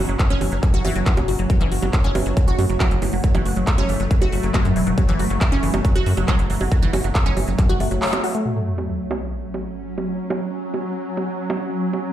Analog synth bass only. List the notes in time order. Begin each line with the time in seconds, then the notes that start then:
0.09 F#1
0.30 F#1
0.41 F#1
0.52 F#1
0.74 F#1
0.85 F#1
0.95 F#1
1.17 E1
1.28 F#1
1.39 F#1
1.61 F#1
1.72 F#1
1.82 F#1
2.04 F#1
2.15 F#1
2.26 F#1
2.48 F#1
2.58 F#2
2.69 F#1
2.91 F#1
3.02 F#1
3.13 F#1
3.35 F#1
3.45 F#1
3.56 F#1
3.78 F#1
3.89 F#1
4.00 F#1
4.22 F#1
4.32 F#1
4.43 F#1
4.65 F#2
4.76 E1
4.87 E1
5.09 F#1
5.19 F#1
5.30 F#1
5.52 F#1
5.63 F#1
5.74 F#1
5.95 F#1
6.06 F#2
6.17 F#1
6.39 F#1
6.50 F#1
6.61 F#1
6.82 F#1
6.93 F#1
7.04 F#1
7.26 F#1
7.37 F#1
7.48 F#1
7.69 F#1
7.80 F#1
7.91 F#1